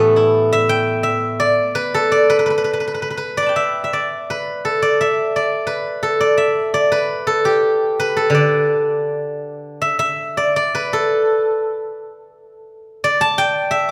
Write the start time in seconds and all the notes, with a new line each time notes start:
Already playing: A2 E3 A3 B3 G4 A4 B4 D5 E5
0.16 E4
0.53 E5
0.69 G5
1.03 E5
1.40 D5
1.75 B4
1.94 A4
2.12 D5
2.30 B4
2.39 B4
2.46 B4
2.50 B4
2.58 B4
2.64 B4
2.73 B4
2.80 B4
2.87 B4
2.94 B4
3.02 B4
3.10 B4
3.17 B4
3.37 D5 D6
3.42 A5 B5
3.49 G5
3.56 E5
3.84 E5
3.93 D5
4.30 B4
4.65 A4
4.82 D5
5.01 E5
5.36 D5
5.67 B4
6.03 A4
6.20 D5
6.37 E5
6.74 D5
6.92 B4
7.27 A4
7.45 G4
8.00 B4
8.16 A4
8.30 D3
8.35 D5
9.82 E5
9.99 E5
10.37 D5
10.56 D5
10.75 B4
10.93 A4
13.04 D5
13.21 A5
13.38 G5
13.71 E5